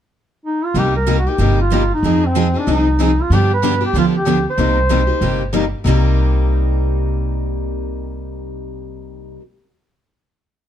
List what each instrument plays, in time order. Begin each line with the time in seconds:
0.46 duduk D#4
0.65 duduk F4
0.74 upright bass C2, steel-string acoustic guitar C3 G3 A#3 D#4 G4
0.79 duduk G4
0.96 duduk A#4
1.07 steel-string acoustic guitar C3 G3 A#3 D#4 G4
1.19 duduk F#4
1.27 steel-string acoustic guitar A#3 D#4 G4, duduk G4
1.38 upright bass G1, steel-string acoustic guitar C3 G3 A#3 D#4 G4
1.61 duduk F4
1.72 steel-string acoustic guitar C3 G3 A#3 D#4 G4
1.94 duduk D#4
2.03 upright bass F2, steel-string acoustic guitar F3 C4 D#4 G#4
2.26 duduk C4
2.35 steel-string acoustic guitar F3 C4 D#4 G#4
2.54 steel-string acoustic guitar C4 D#4 G#4
2.60 duduk D4
2.67 upright bass C2, steel-string acoustic guitar F3 C4 D#4 G#4
2.73 duduk D#4
2.99 steel-string acoustic guitar F3 C4 D#4 G#4
3.03 duduk D#4
3.22 duduk F4
3.30 upright bass G2, steel-string acoustic guitar D3 F3 B3 D4 G4
3.35 duduk G4
3.54 duduk B4
3.62 steel-string acoustic guitar D3 F3 B3 D4 G4
3.81 steel-string acoustic guitar B3 D4 G4
3.85 duduk G4
3.93 upright bass D2, steel-string acoustic guitar D3 F3 B3 D4 G4
3.98 duduk F4
4.17 duduk G4
4.25 steel-string acoustic guitar D3 F3 B3 D4 G4
4.50 duduk C5
4.58 upright bass C2, steel-string acoustic guitar C3 G3 A#3 D#4 G4
4.90 steel-string acoustic guitar C3 G3 A#3 D#4 G4
5.07 steel-string acoustic guitar A#3 D#4 G4
5.21 upright bass G1, steel-string acoustic guitar C3 G3 A#3 D#4 G4
5.53 steel-string acoustic guitar C3 G3 A#3 D#4 G4
5.84 upright bass C2, steel-string acoustic guitar C3 G3 A#3 D#4 G4